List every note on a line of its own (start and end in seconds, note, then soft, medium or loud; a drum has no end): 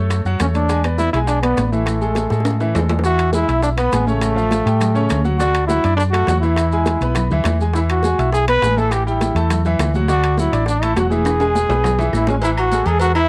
0.00 0.23 F#2 medium
0.00 0.20 A3 medium
0.00 0.20 A4 medium
0.00 0.20 C#5 medium
0.10 high bongo medium
0.10 high conga soft
0.10 high timbale medium
0.10 claves medium
0.10 maracas medium
0.25 0.39 F#2 medium
0.25 0.38 F#3 medium
0.25 0.38 F#4 medium
0.25 0.38 F#5 medium
0.25 high bongo soft
0.25 high conga soft
0.25 maracas soft
0.40 1.08 E2 medium
0.40 0.64 A3 medium
0.40 0.47 C#4 medium
0.40 0.65 A4 medium
0.40 0.65 C#5 medium
0.40 high bongo medium
0.40 low bongo medium
0.40 high conga medium
0.40 high timbale medium
0.40 claves medium
0.40 maracas medium
0.55 0.82 D4 loud
0.55 high bongo soft
0.55 high conga medium
0.55 high timbale medium
0.55 maracas soft
0.69 0.82 G#3 medium
0.69 0.82 G#4 medium
0.69 0.82 G#5 medium
0.69 high bongo medium
0.69 high timbale medium
0.69 maracas medium
0.84 1.09 B3 medium
0.84 1.09 B4 medium
0.84 1.09 D5 medium
0.84 high conga soft
0.84 high timbale medium
0.84 claves medium
0.84 maracas soft
0.98 1.12 E4 loud
0.98 high bongo medium
0.98 high conga medium
0.98 maracas medium
1.13 1.55 B1 medium
1.13 1.38 G#3 medium
1.13 1.20 E4 medium
1.13 1.39 G#4 medium
1.13 1.39 G#5 medium
1.13 high timbale medium
1.13 maracas soft
1.27 1.42 D4 medium
1.27 high bongo medium
1.27 high conga soft
1.27 high timbale medium
1.27 maracas medium
1.42 1.66 B3 loud
1.42 1.67 B3 medium
1.42 1.67 B4 medium
1.42 1.68 D5 medium
1.42 high conga soft
1.42 high timbale medium
1.42 claves medium
1.42 maracas soft
1.57 2.26 A1 medium
1.57 high bongo medium
1.57 low bongo medium
1.57 high conga medium
1.57 high timbale medium
1.57 maracas medium
1.66 1.74 B3 medium
1.72 1.97 E3 medium
1.72 2.75 A3 medium
1.72 1.97 E4 medium
1.72 1.97 E5 medium
1.72 high conga medium
1.72 maracas soft
1.86 high bongo medium
1.86 high timbale medium
1.86 claves medium
1.86 maracas medium
2.01 2.26 G#3 medium
2.01 2.26 G#4 medium
2.01 2.26 A4 medium
2.01 high bongo soft
2.01 maracas soft
2.15 high bongo medium
2.15 high conga loud
2.15 high timbale medium
2.15 maracas medium
2.30 2.72 A2 medium
2.30 2.55 G#3 medium
2.30 2.56 G#4 medium
2.30 2.55 A4 medium
2.30 high bongo medium
2.30 maracas soft
2.40 high bongo medium
2.45 high conga soft
2.45 high timbale medium
2.45 claves medium
2.45 maracas medium
2.51 high bongo medium
2.60 2.73 E3 medium
2.60 2.73 E4 medium
2.60 2.73 E5 medium
2.60 high conga soft
2.60 high timbale medium
2.60 maracas soft
2.75 3.43 E2 medium
2.75 3.00 G#3 medium
2.75 3.00 G#4 medium
2.75 3.00 A4 medium
2.75 high conga medium
2.75 low timbale loud
2.75 claves medium
2.75 maracas medium
2.79 low bongo loud
2.89 high conga medium
2.89 low timbale loud
2.89 maracas soft
2.99 low bongo loud
3.04 3.29 E3 medium
3.04 3.29 E4 medium
3.04 3.32 F#4 loud
3.04 3.30 E5 medium
3.04 high bongo medium
3.04 maracas medium
3.19 high timbale loud
3.19 claves medium
3.19 maracas soft
3.33 3.46 G#3 medium
3.33 3.61 E4 loud
3.33 3.46 G#4 medium
3.33 3.46 G#5 medium
3.33 high bongo medium
3.33 high conga loud
3.33 maracas medium
3.48 3.90 B1 medium
3.48 3.72 E4 medium
3.48 3.73 E5 medium
3.48 3.73 E6 medium
3.48 high conga soft
3.48 high timbale medium
3.48 maracas soft
3.62 3.70 D4 medium
3.62 high bongo medium
3.62 high conga soft
3.62 maracas medium
3.78 3.90 B3 medium
3.78 4.05 B3 loud
3.78 3.90 B4 medium
3.78 3.90 B5 medium
3.78 high timbale medium
3.78 claves medium
3.78 maracas soft
3.92 4.61 A1 medium
3.92 4.05 G#3 medium
3.92 4.05 G#4 medium
3.92 4.05 G#5 medium
3.92 high bongo medium
3.92 low bongo medium
3.92 high conga medium
3.92 high timbale medium
3.92 maracas medium
4.06 4.31 C#3 medium
4.06 5.21 A3 loud
4.06 4.32 C#4 medium
4.06 4.32 C#5 medium
4.06 high conga medium
4.06 maracas soft
4.21 high bongo medium
4.21 high conga soft
4.21 high timbale medium
4.21 claves medium
4.21 maracas medium
4.35 4.60 F3 medium
4.35 4.61 F4 medium
4.35 4.61 F5 medium
4.35 maracas soft
4.51 high bongo medium
4.51 high conga loud
4.51 high timbale medium
4.51 maracas medium
4.65 5.07 A2 medium
4.65 4.90 G3 medium
4.65 4.90 G4 medium
4.65 4.90 G5 medium
4.65 high bongo soft
4.65 high timbale medium
4.65 maracas soft
4.81 high bongo medium
4.81 high conga soft
4.81 low conga medium
4.81 high timbale medium
4.81 claves medium
4.81 maracas medium
4.94 5.19 C#3 medium
4.94 5.20 C#4 medium
4.94 5.20 C#5 medium
4.94 high bongo soft
4.94 high conga soft
4.94 maracas soft
5.09 5.79 D2 medium
5.09 high bongo medium
5.09 low bongo medium
5.09 high conga medium
5.09 high timbale medium
5.09 claves medium
5.09 maracas medium
5.24 5.37 F#3 medium
5.24 5.37 F#4 medium
5.24 5.37 F#5 medium
5.24 high bongo soft
5.24 high conga medium
5.24 maracas soft
5.38 5.64 D3 medium
5.38 5.64 D4 medium
5.38 5.66 F#4 loud
5.38 5.64 D5 medium
5.38 high bongo medium
5.38 high conga soft
5.38 maracas medium
5.54 high conga soft
5.54 high timbale medium
5.54 claves medium
5.54 maracas soft
5.67 5.81 F#3 medium
5.67 5.96 E4 loud
5.67 5.82 F#4 medium
5.67 5.82 F#5 medium
5.67 high bongo medium
5.67 high conga loud
5.67 maracas medium
5.84 6.25 F#2 loud
5.84 6.08 D4 medium
5.84 6.08 D5 medium
5.84 6.09 D6 medium
5.84 high conga soft
5.84 high timbale medium
5.84 maracas soft
5.97 6.04 D4 loud
5.97 high bongo medium
5.97 high conga soft
5.97 maracas medium
6.11 6.25 A3 medium
6.11 6.39 F#4 loud
6.11 6.25 A4 medium
6.11 6.25 A5 medium
6.11 high conga soft
6.11 high timbale loud
6.11 claves medium
6.11 maracas soft
6.27 6.96 E2 medium
6.27 6.40 F#3 medium
6.27 6.40 F#4 medium
6.27 6.41 F#5 medium
6.27 high bongo medium
6.27 low bongo medium
6.27 high conga medium
6.27 high timbale medium
6.27 low timbale medium
6.27 maracas medium
6.41 6.67 E3 medium
6.41 7.28 E4 medium
6.41 6.67 E4 medium
6.41 6.67 E5 medium
6.41 high conga medium
6.41 maracas soft
6.57 high bongo medium
6.57 high timbale medium
6.57 claves medium
6.57 maracas medium
6.72 6.96 G#3 medium
6.72 6.97 G#4 medium
6.72 6.97 G#5 medium
6.72 high conga soft
6.72 maracas soft
6.86 high bongo medium
6.86 high conga loud
6.86 high timbale medium
6.86 maracas medium
7.01 7.28 B1 loud
7.01 7.26 B3 medium
7.01 7.26 B4 medium
7.01 7.27 B5 medium
7.01 high bongo soft
7.01 high conga soft
7.01 high timbale medium
7.01 maracas soft
7.15 high bongo medium
7.15 high conga soft
7.15 low conga medium
7.15 high timbale medium
7.15 claves medium
7.15 maracas medium
7.31 7.44 D2 medium
7.31 7.55 E3 medium
7.31 7.56 E4 medium
7.31 7.56 E5 medium
7.31 high bongo soft
7.31 high conga soft
7.31 low conga medium
7.31 maracas soft
7.44 8.13 E2 medium
7.44 high bongo medium
7.44 low bongo medium
7.44 high conga medium
7.44 high timbale loud
7.44 low timbale medium
7.44 claves medium
7.44 maracas medium
7.59 7.72 G#3 medium
7.59 7.73 G#4 medium
7.59 7.73 G#5 medium
7.59 high bongo soft
7.59 high conga medium
7.59 maracas soft
7.74 7.99 E3 medium
7.74 7.81 E4 medium
7.74 7.99 E4 medium
7.74 7.99 E5 medium
7.74 high bongo medium
7.74 high conga soft
7.74 maracas medium
7.90 8.31 F#4 medium
7.90 high conga soft
7.90 high timbale medium
7.90 claves medium
7.90 maracas soft
8.03 8.16 G#3 medium
8.03 8.16 G#4 medium
8.03 8.17 G#5 medium
8.03 high bongo medium
8.03 high conga loud
8.03 maracas medium
8.19 8.60 B1 loud
8.19 8.43 E4 medium
8.19 8.43 E5 medium
8.19 8.43 E6 medium
8.19 high conga soft
8.19 high timbale medium
8.19 maracas soft
8.33 8.47 G#4 loud
8.33 high bongo medium
8.33 high conga soft
8.33 maracas medium
8.48 8.60 B3 medium
8.48 8.60 B4 medium
8.48 8.79 B4 loud
8.48 8.60 B5 medium
8.48 high conga soft
8.48 high timbale loud
8.48 claves medium
8.48 maracas soft
8.62 9.30 A1 medium
8.62 8.75 G#3 medium
8.62 8.75 G#4 medium
8.62 8.75 G#5 medium
8.62 high bongo medium
8.62 low bongo medium
8.62 high conga medium
8.62 high timbale medium
8.62 maracas medium
8.77 9.01 E3 medium
8.77 9.01 E4 medium
8.77 8.94 A4 loud
8.77 9.02 E5 medium
8.77 high conga medium
8.77 maracas soft
8.91 9.06 G4 medium
8.91 high bongo medium
8.91 high timbale medium
8.91 claves medium
8.91 maracas medium
9.07 9.31 G3 medium
9.07 9.61 E4 medium
9.07 9.31 G4 medium
9.07 9.31 G5 medium
9.07 high conga soft
9.07 maracas soft
9.21 high bongo medium
9.21 high conga loud
9.21 high timbale medium
9.21 maracas medium
9.35 9.76 E2 loud
9.35 9.60 A3 medium
9.35 9.60 A4 medium
9.35 9.60 A5 medium
9.35 high timbale medium
9.35 maracas soft
9.50 high bongo medium
9.50 high conga soft
9.50 low conga medium
9.50 high timbale medium
9.50 claves medium
9.50 maracas medium
9.65 9.89 E3 medium
9.65 9.90 E4 medium
9.65 9.90 E5 medium
9.65 high bongo soft
9.65 high conga soft
9.65 low conga medium
9.65 maracas soft
9.79 10.47 D2 medium
9.79 high bongo medium
9.79 low bongo medium
9.79 high conga medium
9.79 high timbale loud
9.79 low timbale medium
9.79 claves medium
9.79 maracas medium
9.93 10.07 F#3 medium
9.93 10.07 F#4 medium
9.93 10.07 F#5 medium
9.93 high bongo soft
9.93 high conga medium
9.93 maracas soft
10.08 10.33 D3 medium
10.08 10.33 D4 medium
10.08 10.41 F#4 loud
10.08 10.33 D5 medium
10.08 high bongo medium
10.08 maracas medium
10.23 high conga soft
10.23 high timbale medium
10.23 claves medium
10.23 maracas soft
10.38 10.51 F#3 medium
10.38 10.67 E4 medium
10.38 10.51 F#4 medium
10.38 10.51 F#5 medium
10.38 high bongo medium
10.38 high conga loud
10.38 maracas medium
10.53 10.94 A1 loud
10.53 10.77 D4 medium
10.53 10.77 D5 medium
10.53 10.77 D6 medium
10.53 high conga soft
10.53 high timbale medium
10.53 maracas soft
10.66 10.85 D4 loud
10.66 high bongo medium
10.66 high conga soft
10.66 maracas medium
10.82 10.95 A3 medium
10.82 10.96 E4 medium
10.82 10.95 A4 medium
10.82 10.95 A5 medium
10.82 high conga soft
10.82 high timbale loud
10.82 claves medium
10.82 maracas soft
10.95 11.64 E1 medium
10.95 11.09 F#3 medium
10.95 11.10 F#4 medium
10.95 11.09 F#4 medium
10.95 11.09 F#5 medium
10.95 high bongo medium
10.95 low bongo medium
10.95 high conga medium
10.95 high timbale medium
10.95 maracas medium
11.11 11.35 E3 medium
11.11 11.35 E4 medium
11.11 12.10 G#4 loud
11.11 11.36 E5 medium
11.11 high conga medium
11.11 maracas soft
11.25 high bongo medium
11.25 high timbale medium
11.25 claves medium
11.25 maracas medium
11.40 11.65 G#3 medium
11.40 11.65 G#4 medium
11.40 11.65 G#5 medium
11.40 high timbale medium
11.40 maracas soft
11.55 high bongo medium
11.55 high conga loud
11.55 maracas medium
11.69 12.10 B1 medium
11.69 11.93 B3 medium
11.69 11.94 B4 medium
11.69 11.94 B5 medium
11.69 high bongo soft
11.69 high conga soft
11.69 low timbale medium
11.69 maracas soft
11.84 high bongo medium
11.84 high conga soft
11.84 low conga medium
11.84 low timbale medium
11.84 claves medium
11.84 maracas medium
11.99 12.23 E3 medium
11.99 12.23 E4 medium
11.99 12.23 E5 medium
11.99 high bongo medium
11.99 high conga soft
11.99 low conga medium
11.99 low timbale medium
11.99 maracas soft
12.13 12.81 A1 medium
12.13 12.28 E4 medium
12.13 high bongo medium
12.13 high conga medium
12.13 claves medium
12.13 maracas medium
12.27 12.40 G#3 medium
12.27 12.36 C#4 medium
12.27 12.41 G#4 medium
12.27 12.41 G#5 medium
12.27 low bongo loud
12.27 high conga medium
12.27 low timbale medium
12.27 maracas soft
12.42 12.67 E3 medium
12.42 12.67 E4 medium
12.42 12.50 E4 loud
12.42 12.67 E5 medium
12.42 cowbell loud
12.42 low agogo medium
12.42 maracas medium
12.57 12.89 F#4 loud
12.57 high conga soft
12.57 low agogo loud
12.57 claves medium
12.57 maracas soft
12.72 12.84 G#3 medium
12.72 12.85 G#4 medium
12.72 12.85 A4 medium
12.72 cowbell medium
12.72 high conga loud
12.72 maracas medium
12.86 13.27 E2 medium
12.86 13.11 G#3 medium
12.86 13.01 G#4 loud
12.86 13.11 G#4 medium
12.86 13.11 A4 medium
12.86 cowbell medium
12.86 high conga soft
12.86 low agogo medium
12.86 maracas soft
12.99 13.15 F#4 loud
12.99 cowbell loud
12.99 high conga soft
12.99 low agogo medium
12.99 maracas medium
13.15 13.27 E3 medium
13.15 13.28 E4 medium
13.15 13.29 E4 loud
13.15 13.28 E5 medium
13.15 high conga soft
13.15 low agogo loud
13.15 claves medium
13.15 maracas soft